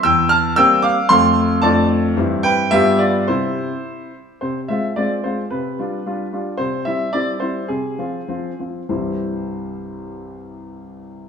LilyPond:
<<
  \new Staff \with { instrumentName = "Grand piano" } { \time 2/4 \key c \major \tempo 4 = 108 <g'' e'''>8 <a'' f'''>8 <g'' e'''>8 <f'' d'''>8 | <f'' c'''>4 <d'' a''>8 r8 | r8 <b' g''>8 <g' e''>8 <f' d''>8 | <e' c''>4. r8 |
c''8 e''8 d''8 c''8 | b'4. r8 | c''8 e''8 d''8 c''8 | aes'4. r8 |
<c, g, e g c' e' c''>2~ | <c, g, e g c' e' c''>2 | }
  \new Staff \with { instrumentName = "Grand piano" } { \time 2/4 \key c \major e,4 <g bes c'>4 | <f, f a c'>4 <f, f a d'>4 | <g, e c' e'>4 <g, g b f'>4 | <c c'>4 r4 |
c8 <aes c' f'>8 <aes c' f'>8 <aes c' f'>8 | c8 <g d' f'>8 <g d' f'>8 <g d' f'>8 | c8 <g c' e'>8 <g c' e'>8 <g c' e'>8 | c8 <f c' f'>8 <f c' f'>8 <f c' f'>8 |
r2 | r2 | }
>>